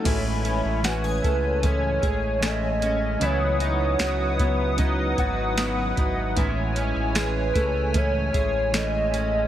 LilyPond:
<<
  \new Staff \with { instrumentName = "Analog synth pad" } { \time 4/4 \key a \lydian \tempo 4 = 76 <cis'' gis''>1 | <b' fis'' dis'''>1 | <cis'' gis''>1 | }
  \new Staff \with { instrumentName = "Soft synth lead" } { \time 4/4 \key a \lydian r4 b'4 cis''4 dis''8 dis''8 | cis''2. r4 | r4 b'4 cis''4 dis''4 | }
  \new Staff \with { instrumentName = "Twelve-string acoustic guitar" } { \time 4/4 \key a \lydian e8 cis'8 fis'16 gis'16 a8 cis'8 gis'8 a8 cis'8 | e8 dis'8 fis'8 b8 dis'8 fis'8 b8 dis'8 | e8 cis'8 gis'8 a8 cis'8 gis'8 a8 cis'8 | }
  \new Staff \with { instrumentName = "Clean electric guitar" } { \time 4/4 \key a \lydian <a, e gis cis' e'>8 <gis cis' e'>8 <e gis cis' e'>8 <gis cis' e'>8 <a, e gis cis' e'>8 <gis cis' e'>8 <e gis cis' e'>8 <gis cis' e'>8 | <cis fis b e'>8 <fis b e'>8 <cis fis b e'>8 <fis b e'>8 <cis fis b e'>8 <fis b e'>8 <cis fis b e'>8 <fis b e'>8 | <a, e gis cis' e'>8 <gis cis' e'>8 <e gis cis' e'>8 <gis cis' e'>8 <a, e gis cis' e'>8 <gis cis' e'>8 <e gis cis' e'>8 <gis cis' e'>8 | }
  \new Staff \with { instrumentName = "Sub bass" } { \clef bass \time 4/4 \key a \lydian a,,8. a,,8. cis,4 a,,4. | cis,4 cis,4. gis,,4 gis,,8 | a,,8. a,,8. cis,4 a,,4. | }
  \new DrumStaff \with { instrumentName = "Drums" } \drummode { \time 4/4 <cymc hh bd>8 hh8 <hh sn tamb>8 <hh bd>8 <hh bd>8 <hh bd>8 <hh sn tamb>8 hh8 | hh8 hh8 <hh sn tamb>8 <hh bd>8 <hh bd>8 <hh bd>8 <hh sn tamb>8 <hh bd>8 | <hh bd>8 hh8 <hh sn tamb>8 <hh bd>8 <hh bd>8 <hh bd>8 <hh sn tamb>8 hh8 | }
>>